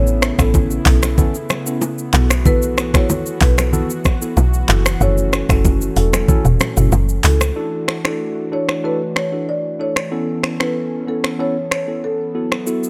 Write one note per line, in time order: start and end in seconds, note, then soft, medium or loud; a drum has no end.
0.00 0.32 A1 loud
0.00 2.12 C#3 medium
0.00 4.97 A3 medium
0.00 0.35 B3 medium
0.00 4.97 B3 medium
0.00 0.35 C#4 medium
0.00 0.35 E4 medium
0.00 2.12 E4 medium
0.00 0.35 A4 loud
0.07 shaker medium
0.22 finger snap medium
0.22 cross-stick loud
0.22 shaker soft
0.39 0.79 A1 loud
0.39 0.82 B3 medium
0.39 0.82 C#4 medium
0.39 0.82 E4 medium
0.39 0.83 A4 medium
0.39 0.53 A4 medium
0.39 finger snap medium
0.39 kick loud
0.39 cross-stick loud
0.39 low bongo medium
0.39 shaker medium
0.54 kick medium
0.54 high bongo medium
0.54 low conga medium
0.54 shaker medium
0.71 shaker medium
0.86 1.28 B1 medium
0.86 1.15 B3 medium
0.86 1.16 C#4 medium
0.86 1.16 E4 medium
0.86 1.16 A4 medium
0.86 1.01 A4 medium
0.86 kick loud
0.86 clap medium
0.86 open hi-hat medium
0.86 shaker medium
1.03 finger snap medium
1.03 cross-stick medium
1.03 low bongo medium
1.03 shaker loud
1.18 1.35 B3 loud
1.18 1.35 C#4 medium
1.18 1.35 E4 medium
1.18 1.35 A4 loud
1.18 kick loud
1.18 low conga medium
1.18 shaker medium
1.35 shaker medium
1.49 finger snap medium
1.49 cross-stick medium
1.49 low bongo medium
1.49 shaker medium
1.66 1.82 B3 medium
1.66 1.82 C#4 medium
1.66 1.82 E4 medium
1.66 1.82 A4 medium
1.66 shaker loud
1.81 high bongo medium
1.81 shaker medium
1.98 shaker soft
2.13 3.24 B1 loud
2.13 7.52 E3 medium
2.13 2.31 B3 medium
2.13 2.31 E4 medium
2.13 7.52 F#4 medium
2.13 2.31 F#4 medium
2.13 2.31 A4 medium
2.13 clap loud
2.13 shaker medium
2.30 finger snap medium
2.30 cross-stick medium
2.30 shaker medium
2.45 2.90 B3 medium
2.45 2.90 E4 medium
2.45 2.90 F#4 medium
2.45 2.90 A4 loud
2.45 2.60 B4 loud
2.45 kick loud
2.45 low conga medium
2.45 shaker medium
2.62 shaker medium
2.78 finger snap medium
2.78 cross-stick medium
2.78 shaker medium
2.94 3.38 B3 medium
2.94 3.38 E4 medium
2.94 3.38 F#4 medium
2.94 3.38 A4 medium
2.94 3.08 C#5 medium
2.94 finger snap medium
2.94 kick loud
2.94 cross-stick medium
2.94 low bongo medium
2.94 shaker medium
3.10 high bongo medium
3.10 low conga medium
3.10 shaker medium
3.26 shaker medium
3.41 3.83 B1 loud
3.41 3.71 B3 medium
3.41 3.71 E4 medium
3.41 3.71 F#4 medium
3.41 3.71 A4 medium
3.41 3.56 B4 medium
3.41 kick loud
3.41 clap medium
3.41 open hi-hat medium
3.41 shaker medium
3.58 finger snap medium
3.58 cross-stick medium
3.58 low bongo medium
3.58 shaker medium
3.73 3.90 B3 loud
3.73 3.90 E4 medium
3.73 3.90 F#4 medium
3.73 3.90 A4 loud
3.73 low conga medium
3.73 shaker medium
3.90 shaker medium
4.05 finger snap medium
4.05 kick medium
4.05 cross-stick medium
4.05 low bongo medium
4.05 shaker medium
4.21 4.37 B3 medium
4.21 4.37 E4 medium
4.21 4.38 F#4 medium
4.21 4.38 A4 medium
4.21 shaker loud
4.37 4.65 B1 loud
4.37 high bongo medium
4.37 shaker medium
4.54 shaker soft
4.69 4.96 F#1 medium
4.69 4.86 B3 medium
4.69 4.86 E4 medium
4.69 4.86 F#4 medium
4.69 4.86 A4 medium
4.69 clap loud
4.69 shaker medium
4.86 finger snap medium
4.86 cross-stick loud
4.86 shaker medium
5.01 5.43 F#1 loud
5.01 7.54 A3 medium
5.01 5.45 C#4 medium
5.01 7.54 C#4 medium
5.01 5.45 E4 medium
5.01 5.45 F#4 medium
5.01 5.46 A4 loud
5.01 5.16 C#5 loud
5.01 low conga medium
5.01 shaker medium
5.18 shaker medium
5.33 finger snap medium
5.33 cross-stick loud
5.33 shaker soft
5.49 5.90 F#1 loud
5.49 5.93 C#4 medium
5.49 5.93 E4 medium
5.49 5.93 F#4 medium
5.49 5.93 A4 medium
5.49 5.63 A4 medium
5.49 finger snap medium
5.49 kick loud
5.49 cross-stick medium
5.49 low bongo medium
5.49 shaker medium
5.65 kick medium
5.65 high bongo medium
5.65 low conga medium
5.65 shaker medium
5.81 shaker medium
5.96 6.24 E1 loud
5.96 6.26 C#4 medium
5.96 6.26 E4 medium
5.96 6.26 F#4 medium
5.96 6.26 A4 medium
5.96 6.12 A4 medium
5.96 open hi-hat medium
5.96 shaker medium
6.13 finger snap medium
6.13 cross-stick medium
6.13 low bongo medium
6.13 shaker medium
6.28 6.45 C#4 loud
6.28 6.45 E4 medium
6.28 6.46 F#4 medium
6.28 6.46 A4 loud
6.28 kick loud
6.28 low conga medium
6.28 shaker medium
6.45 6.58 E1 medium
6.45 mid tom loud
6.45 shaker medium
6.60 finger snap medium
6.60 cross-stick medium
6.60 low bongo medium
6.60 shaker medium
6.77 6.90 F#1 medium
6.77 6.93 C#4 medium
6.77 6.93 E4 medium
6.77 6.93 F#4 medium
6.77 6.93 A4 medium
6.77 mid tom loud
6.77 shaker loud
6.92 7.20 F#1 loud
6.92 high bongo medium
6.92 shaker medium
7.09 shaker soft
7.24 7.52 C#2 medium
7.24 7.41 C#4 medium
7.24 7.41 E4 medium
7.24 7.41 F#4 medium
7.24 7.41 A4 medium
7.24 7.39 A4 medium
7.24 clap medium
7.24 open hi-hat medium
7.24 shaker medium
7.41 finger snap medium
7.41 cross-stick medium
7.41 high bongo medium
7.41 shaker loud
7.56 12.31 E3 medium
7.56 10.09 A3 medium
7.56 8.01 D4 medium
7.56 10.09 D4 medium
7.56 8.01 E4 medium
7.56 8.01 F#4 medium
7.56 10.09 F#4 medium
7.56 8.01 A4 loud
7.88 finger snap medium
7.88 cross-stick medium
8.04 8.48 D4 medium
8.04 8.48 E4 medium
8.04 8.48 F#4 medium
8.04 8.48 A4 medium
8.04 8.18 A4 medium
8.04 finger snap medium
8.04 cross-stick medium
8.52 8.81 D4 medium
8.52 8.81 E4 medium
8.52 8.81 F#4 medium
8.52 8.82 A4 medium
8.52 8.67 C#5 medium
8.69 finger snap medium
8.69 cross-stick medium
8.84 9.01 D4 medium
8.84 9.01 E4 medium
8.84 9.01 F#4 medium
8.84 9.01 A4 loud
8.84 8.99 B4 medium
9.16 9.31 C#5 medium
9.16 finger snap medium
9.16 cross-stick medium
9.32 9.48 D4 medium
9.32 9.48 E4 medium
9.32 9.48 F#4 medium
9.32 9.48 A4 medium
9.49 9.62 D5 medium
9.79 9.96 D4 medium
9.79 9.97 E4 medium
9.79 9.97 F#4 medium
9.79 9.97 A4 medium
9.79 9.94 C#5 medium
9.96 finger snap medium
9.96 cross-stick medium
10.11 10.56 B3 medium
10.11 12.90 B3 medium
10.11 10.56 C#4 medium
10.11 12.33 C#4 medium
10.11 10.56 E4 medium
10.11 12.90 A4 medium
10.11 10.56 A4 medium
10.43 finger snap medium
10.43 cross-stick medium
10.60 11.04 B3 medium
10.60 11.04 C#4 medium
10.60 11.04 E4 medium
10.60 11.04 A4 medium
10.60 10.74 B4 medium
10.60 finger snap medium
10.60 cross-stick medium
11.07 11.37 B3 medium
11.07 11.37 C#4 medium
11.07 11.37 E4 medium
11.07 11.37 A4 medium
11.07 11.22 A4 medium
11.24 finger snap medium
11.24 cross-stick medium
11.39 11.56 B3 medium
11.39 11.56 C#4 medium
11.39 11.56 E4 medium
11.39 11.56 A4 medium
11.39 11.54 C#5 medium
11.71 11.86 C#5 medium
11.71 finger snap medium
11.71 cross-stick medium
11.87 12.03 B3 medium
11.87 12.03 C#4 medium
11.87 12.04 E4 medium
11.87 12.04 A4 medium
12.04 12.49 A4 medium
12.35 12.90 F#3 medium
12.35 12.52 B3 medium
12.35 12.52 E4 medium
12.35 12.90 E4 medium
12.35 12.52 F#4 medium
12.35 12.52 A4 medium
12.52 finger snap medium
12.52 cross-stick medium
12.67 12.90 B3 medium
12.67 12.90 E4 medium
12.67 12.90 F#4 medium
12.67 12.90 A4 loud
12.67 shaker medium
12.84 shaker medium